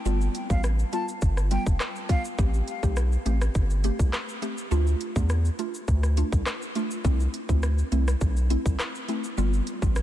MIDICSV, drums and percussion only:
0, 0, Header, 1, 2, 480
1, 0, Start_track
1, 0, Key_signature, 0, "major"
1, 0, Tempo, 582524
1, 46, Time_signature, 4, 2, 24, 8
1, 8259, End_track
2, 0, Start_track
2, 0, Title_t, "Drums"
2, 46, Note_on_c, 9, 82, 79
2, 128, Note_off_c, 9, 82, 0
2, 175, Note_on_c, 9, 82, 50
2, 257, Note_off_c, 9, 82, 0
2, 286, Note_on_c, 9, 42, 69
2, 286, Note_on_c, 9, 82, 51
2, 368, Note_off_c, 9, 42, 0
2, 368, Note_off_c, 9, 82, 0
2, 412, Note_on_c, 9, 36, 83
2, 412, Note_on_c, 9, 82, 75
2, 494, Note_off_c, 9, 36, 0
2, 494, Note_off_c, 9, 82, 0
2, 523, Note_on_c, 9, 82, 71
2, 527, Note_on_c, 9, 37, 95
2, 605, Note_off_c, 9, 82, 0
2, 609, Note_off_c, 9, 37, 0
2, 652, Note_on_c, 9, 82, 53
2, 735, Note_off_c, 9, 82, 0
2, 765, Note_on_c, 9, 42, 74
2, 765, Note_on_c, 9, 82, 50
2, 847, Note_off_c, 9, 42, 0
2, 847, Note_off_c, 9, 82, 0
2, 893, Note_on_c, 9, 82, 79
2, 975, Note_off_c, 9, 82, 0
2, 1002, Note_on_c, 9, 82, 85
2, 1006, Note_on_c, 9, 36, 92
2, 1084, Note_off_c, 9, 82, 0
2, 1088, Note_off_c, 9, 36, 0
2, 1131, Note_on_c, 9, 37, 77
2, 1131, Note_on_c, 9, 82, 57
2, 1213, Note_off_c, 9, 37, 0
2, 1214, Note_off_c, 9, 82, 0
2, 1244, Note_on_c, 9, 42, 77
2, 1244, Note_on_c, 9, 82, 56
2, 1326, Note_off_c, 9, 42, 0
2, 1326, Note_off_c, 9, 82, 0
2, 1372, Note_on_c, 9, 36, 94
2, 1373, Note_on_c, 9, 82, 85
2, 1454, Note_off_c, 9, 36, 0
2, 1455, Note_off_c, 9, 82, 0
2, 1484, Note_on_c, 9, 37, 104
2, 1484, Note_on_c, 9, 39, 103
2, 1485, Note_on_c, 9, 82, 68
2, 1566, Note_off_c, 9, 37, 0
2, 1566, Note_off_c, 9, 39, 0
2, 1567, Note_off_c, 9, 82, 0
2, 1612, Note_on_c, 9, 82, 53
2, 1695, Note_off_c, 9, 82, 0
2, 1724, Note_on_c, 9, 36, 101
2, 1725, Note_on_c, 9, 42, 61
2, 1725, Note_on_c, 9, 82, 41
2, 1807, Note_off_c, 9, 36, 0
2, 1807, Note_off_c, 9, 42, 0
2, 1807, Note_off_c, 9, 82, 0
2, 1851, Note_on_c, 9, 82, 85
2, 1933, Note_off_c, 9, 82, 0
2, 1964, Note_on_c, 9, 82, 75
2, 1965, Note_on_c, 9, 36, 116
2, 2047, Note_off_c, 9, 82, 0
2, 2048, Note_off_c, 9, 36, 0
2, 2093, Note_on_c, 9, 82, 50
2, 2175, Note_off_c, 9, 82, 0
2, 2205, Note_on_c, 9, 42, 70
2, 2205, Note_on_c, 9, 82, 48
2, 2287, Note_off_c, 9, 42, 0
2, 2287, Note_off_c, 9, 82, 0
2, 2332, Note_on_c, 9, 36, 83
2, 2332, Note_on_c, 9, 82, 71
2, 2414, Note_off_c, 9, 36, 0
2, 2414, Note_off_c, 9, 82, 0
2, 2442, Note_on_c, 9, 82, 74
2, 2445, Note_on_c, 9, 37, 98
2, 2524, Note_off_c, 9, 82, 0
2, 2528, Note_off_c, 9, 37, 0
2, 2572, Note_on_c, 9, 82, 56
2, 2655, Note_off_c, 9, 82, 0
2, 2685, Note_on_c, 9, 42, 73
2, 2685, Note_on_c, 9, 82, 51
2, 2767, Note_off_c, 9, 42, 0
2, 2767, Note_off_c, 9, 82, 0
2, 2813, Note_on_c, 9, 82, 76
2, 2814, Note_on_c, 9, 37, 101
2, 2895, Note_off_c, 9, 82, 0
2, 2896, Note_off_c, 9, 37, 0
2, 2923, Note_on_c, 9, 82, 81
2, 2926, Note_on_c, 9, 36, 100
2, 3005, Note_off_c, 9, 82, 0
2, 3008, Note_off_c, 9, 36, 0
2, 3051, Note_on_c, 9, 82, 60
2, 3134, Note_off_c, 9, 82, 0
2, 3164, Note_on_c, 9, 42, 75
2, 3164, Note_on_c, 9, 82, 56
2, 3246, Note_off_c, 9, 42, 0
2, 3246, Note_off_c, 9, 82, 0
2, 3291, Note_on_c, 9, 36, 95
2, 3292, Note_on_c, 9, 82, 86
2, 3374, Note_off_c, 9, 36, 0
2, 3375, Note_off_c, 9, 82, 0
2, 3404, Note_on_c, 9, 37, 103
2, 3404, Note_on_c, 9, 39, 104
2, 3405, Note_on_c, 9, 82, 69
2, 3487, Note_off_c, 9, 37, 0
2, 3487, Note_off_c, 9, 39, 0
2, 3488, Note_off_c, 9, 82, 0
2, 3533, Note_on_c, 9, 82, 52
2, 3616, Note_off_c, 9, 82, 0
2, 3644, Note_on_c, 9, 42, 60
2, 3644, Note_on_c, 9, 82, 42
2, 3727, Note_off_c, 9, 42, 0
2, 3727, Note_off_c, 9, 82, 0
2, 3771, Note_on_c, 9, 82, 83
2, 3853, Note_off_c, 9, 82, 0
2, 3884, Note_on_c, 9, 82, 77
2, 3967, Note_off_c, 9, 82, 0
2, 4012, Note_on_c, 9, 82, 48
2, 4095, Note_off_c, 9, 82, 0
2, 4126, Note_on_c, 9, 42, 72
2, 4126, Note_on_c, 9, 82, 51
2, 4208, Note_off_c, 9, 42, 0
2, 4208, Note_off_c, 9, 82, 0
2, 4251, Note_on_c, 9, 36, 89
2, 4251, Note_on_c, 9, 82, 71
2, 4334, Note_off_c, 9, 36, 0
2, 4334, Note_off_c, 9, 82, 0
2, 4362, Note_on_c, 9, 82, 72
2, 4366, Note_on_c, 9, 37, 94
2, 4444, Note_off_c, 9, 82, 0
2, 4448, Note_off_c, 9, 37, 0
2, 4492, Note_on_c, 9, 82, 54
2, 4574, Note_off_c, 9, 82, 0
2, 4606, Note_on_c, 9, 42, 72
2, 4606, Note_on_c, 9, 82, 50
2, 4688, Note_off_c, 9, 42, 0
2, 4688, Note_off_c, 9, 82, 0
2, 4734, Note_on_c, 9, 82, 78
2, 4816, Note_off_c, 9, 82, 0
2, 4843, Note_on_c, 9, 82, 83
2, 4846, Note_on_c, 9, 36, 93
2, 4926, Note_off_c, 9, 82, 0
2, 4928, Note_off_c, 9, 36, 0
2, 4971, Note_on_c, 9, 37, 76
2, 4972, Note_on_c, 9, 82, 58
2, 5054, Note_off_c, 9, 37, 0
2, 5054, Note_off_c, 9, 82, 0
2, 5086, Note_on_c, 9, 42, 75
2, 5086, Note_on_c, 9, 82, 54
2, 5168, Note_off_c, 9, 42, 0
2, 5168, Note_off_c, 9, 82, 0
2, 5212, Note_on_c, 9, 36, 99
2, 5214, Note_on_c, 9, 82, 86
2, 5294, Note_off_c, 9, 36, 0
2, 5296, Note_off_c, 9, 82, 0
2, 5325, Note_on_c, 9, 37, 105
2, 5325, Note_on_c, 9, 39, 104
2, 5326, Note_on_c, 9, 82, 70
2, 5407, Note_off_c, 9, 37, 0
2, 5407, Note_off_c, 9, 39, 0
2, 5409, Note_off_c, 9, 82, 0
2, 5454, Note_on_c, 9, 82, 55
2, 5537, Note_off_c, 9, 82, 0
2, 5565, Note_on_c, 9, 42, 59
2, 5565, Note_on_c, 9, 82, 42
2, 5648, Note_off_c, 9, 42, 0
2, 5648, Note_off_c, 9, 82, 0
2, 5693, Note_on_c, 9, 82, 85
2, 5775, Note_off_c, 9, 82, 0
2, 5806, Note_on_c, 9, 36, 122
2, 5806, Note_on_c, 9, 82, 78
2, 5888, Note_off_c, 9, 36, 0
2, 5888, Note_off_c, 9, 82, 0
2, 5934, Note_on_c, 9, 82, 51
2, 6017, Note_off_c, 9, 82, 0
2, 6047, Note_on_c, 9, 42, 70
2, 6047, Note_on_c, 9, 82, 51
2, 6129, Note_off_c, 9, 42, 0
2, 6129, Note_off_c, 9, 82, 0
2, 6172, Note_on_c, 9, 36, 85
2, 6173, Note_on_c, 9, 82, 72
2, 6255, Note_off_c, 9, 36, 0
2, 6256, Note_off_c, 9, 82, 0
2, 6284, Note_on_c, 9, 82, 71
2, 6288, Note_on_c, 9, 37, 101
2, 6366, Note_off_c, 9, 82, 0
2, 6370, Note_off_c, 9, 37, 0
2, 6414, Note_on_c, 9, 82, 55
2, 6496, Note_off_c, 9, 82, 0
2, 6526, Note_on_c, 9, 42, 72
2, 6526, Note_on_c, 9, 82, 52
2, 6608, Note_off_c, 9, 42, 0
2, 6608, Note_off_c, 9, 82, 0
2, 6655, Note_on_c, 9, 82, 75
2, 6656, Note_on_c, 9, 37, 104
2, 6738, Note_off_c, 9, 82, 0
2, 6739, Note_off_c, 9, 37, 0
2, 6765, Note_on_c, 9, 82, 88
2, 6767, Note_on_c, 9, 36, 98
2, 6847, Note_off_c, 9, 82, 0
2, 6849, Note_off_c, 9, 36, 0
2, 6894, Note_on_c, 9, 82, 61
2, 6976, Note_off_c, 9, 82, 0
2, 7007, Note_on_c, 9, 42, 76
2, 7007, Note_on_c, 9, 82, 55
2, 7089, Note_off_c, 9, 42, 0
2, 7089, Note_off_c, 9, 82, 0
2, 7133, Note_on_c, 9, 36, 100
2, 7135, Note_on_c, 9, 82, 88
2, 7215, Note_off_c, 9, 36, 0
2, 7218, Note_off_c, 9, 82, 0
2, 7246, Note_on_c, 9, 37, 106
2, 7246, Note_on_c, 9, 39, 100
2, 7247, Note_on_c, 9, 82, 67
2, 7328, Note_off_c, 9, 37, 0
2, 7328, Note_off_c, 9, 39, 0
2, 7330, Note_off_c, 9, 82, 0
2, 7375, Note_on_c, 9, 82, 53
2, 7457, Note_off_c, 9, 82, 0
2, 7486, Note_on_c, 9, 42, 58
2, 7486, Note_on_c, 9, 82, 42
2, 7569, Note_off_c, 9, 42, 0
2, 7569, Note_off_c, 9, 82, 0
2, 7614, Note_on_c, 9, 82, 84
2, 7696, Note_off_c, 9, 82, 0
2, 7727, Note_on_c, 9, 82, 81
2, 7809, Note_off_c, 9, 82, 0
2, 7856, Note_on_c, 9, 82, 51
2, 7938, Note_off_c, 9, 82, 0
2, 7967, Note_on_c, 9, 42, 70
2, 7967, Note_on_c, 9, 82, 51
2, 8050, Note_off_c, 9, 42, 0
2, 8050, Note_off_c, 9, 82, 0
2, 8093, Note_on_c, 9, 36, 85
2, 8093, Note_on_c, 9, 82, 74
2, 8175, Note_off_c, 9, 36, 0
2, 8176, Note_off_c, 9, 82, 0
2, 8204, Note_on_c, 9, 82, 71
2, 8208, Note_on_c, 9, 37, 100
2, 8259, Note_off_c, 9, 37, 0
2, 8259, Note_off_c, 9, 82, 0
2, 8259, End_track
0, 0, End_of_file